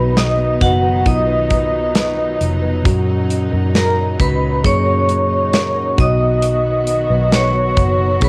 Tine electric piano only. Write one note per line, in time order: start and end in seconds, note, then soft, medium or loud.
0.00 0.57 B2 medium
0.00 0.96 B3 medium
0.00 0.97 D#4 medium
0.00 0.97 F#4 medium
1.05 2.75 B3 medium
1.05 2.76 D#4 medium
1.05 2.76 F4 medium
2.83 4.54 A#2 medium
2.83 4.55 C#4 medium
2.83 4.55 F#4 medium
4.63 5.98 A#3 medium
4.63 5.98 C#4 medium
4.63 5.99 G#4 medium
5.97 7.29 B2 medium
5.97 7.68 B3 medium
5.97 7.68 D#4 medium
5.97 7.69 F#4 medium
8.21 8.29 B3 medium
8.21 8.29 D#4 medium
8.21 8.29 G#4 medium